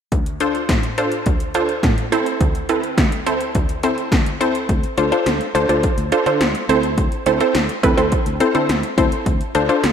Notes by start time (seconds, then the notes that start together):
0.12 D2, kick, closed hi-hat
0.26 closed hi-hat
0.40 D4 F4 A4 C5, closed hi-hat
0.55 closed hi-hat
0.69 A2, kick, snare, closed hi-hat
0.83 closed hi-hat
0.98 D4 F4 A4 C5, closed hi-hat
1.12 closed hi-hat
1.26 D2, kick, closed hi-hat
1.40 closed hi-hat
1.54 D4 F4 A4 C5, closed hi-hat
1.69 closed hi-hat
1.83 A2, kick, snare, closed hi-hat
1.98 closed hi-hat
2.12 C4 E4 A4 C5, closed hi-hat
2.26 closed hi-hat
2.41 D2, kick, closed hi-hat
2.55 closed hi-hat
2.69 C4 E4 A4 B4, closed hi-hat
2.83 closed hi-hat
2.98 D2, kick, snare, closed hi-hat
3.12 closed hi-hat
3.26 C4 E4 A4 C5, closed hi-hat
3.41 closed hi-hat
3.55 D2, kick, closed hi-hat
3.69 closed hi-hat
3.83 C4 E4 A4 C5, closed hi-hat
3.98 closed hi-hat
4.12 D2, kick, snare, closed hi-hat
4.26 closed hi-hat
4.41 C4 E4 A4 C5, closed hi-hat
4.55 closed hi-hat
4.69 D2, kick, closed hi-hat
4.83 closed hi-hat
4.98 D2 D4 F4 A4 C5, closed hi-hat
5.12 D4 F4 A4 C5, closed hi-hat
5.26 D2, snare, closed hi-hat
5.41 closed hi-hat
5.55 D2 D4 F4 A4 C5, closed hi-hat
5.69 D2 D4 F4 A4 C5, closed hi-hat
5.83 kick, closed hi-hat
5.97 D2, closed hi-hat
6.12 D4 F4 A4 C5, closed hi-hat
6.26 D3 D4 F4 A4 C5, closed hi-hat
6.40 D2, snare, closed hi-hat
6.55 closed hi-hat
6.69 D2 C4 E4 A4 C5, closed hi-hat
6.83 closed hi-hat
6.98 kick, closed hi-hat
7.12 closed hi-hat
7.26 D2 C4 E4 A4 C5, closed hi-hat
7.40 C4 E4 A4 C5, closed hi-hat
7.55 D2, snare, closed hi-hat
7.69 closed hi-hat
7.83 D2 C4 E4 A4 B4, kick, closed hi-hat
7.97 D2 C4 E4 A4 C5, closed hi-hat
8.12 kick, closed hi-hat
8.26 D2, closed hi-hat
8.40 C4 E4 A4 C5, closed hi-hat
8.55 D3 C4 E4 A4 C5, closed hi-hat
8.69 D2, snare, closed hi-hat
8.83 closed hi-hat
8.98 D2 C4 E4 A4 C5, kick, closed hi-hat
9.12 closed hi-hat
9.26 D2, kick, closed hi-hat
9.41 closed hi-hat
9.55 D2 D4 F4 A4 C5, closed hi-hat
9.69 D4 F4 A4 C5, closed hi-hat
9.84 D2, snare, closed hi-hat